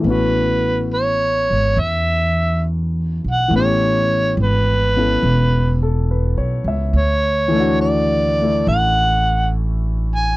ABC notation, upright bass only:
X:1
M:4/4
L:1/8
Q:"Swing" 1/4=70
K:A
V:1 name="Upright bass" clef=bass
A,,,3 G,,, E,,3 B,,, | A,,,2 G,,,2 E,,,2- (3E,,, B,,, C,, | D,,4 A,,,4 |]